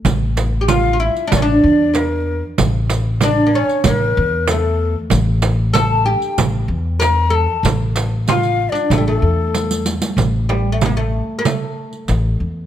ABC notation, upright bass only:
X:1
M:4/4
L:1/8
Q:1/4=95
K:none
V:1 name="Upright bass" clef=bass
A,,,4 A,,, E,,3 | A,,,4 A,,, E,,3 | A,,,4 A,,, E,,3 | A,,,4 A,,, E,,3 |
A,,,4 z2 A,,, E,, |]